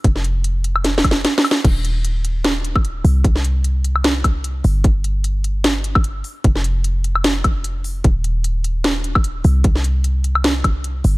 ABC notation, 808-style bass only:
X:1
M:4/4
L:1/8
Q:"Swing 16ths" 1/4=150
K:Cm
V:1 name="808-style bass" clef=bass
F,,,6 z2 | E,,,6- E,,, C,,- | C,,6- C,, G,,,- | G,,,6- G,,, z |
F,,,8 | E,,,6- E,,, C,,- | C,,6- C,, G,,, |]